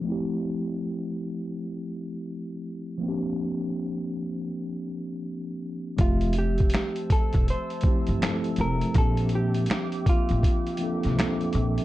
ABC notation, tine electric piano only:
X:1
M:4/4
L:1/8
Q:"Swing 16ths" 1/4=81
K:F
V:1 name="Tine electric piano"
[F,A,CEG]8 | [F,B,C_D=DG]8 | [F,A,CGe]3 z2 [F,A,CEG] [F,A,CEA]2 | [F,B,CDG]3 z2 [F,B,CDA] [F,B,CDA]2 |]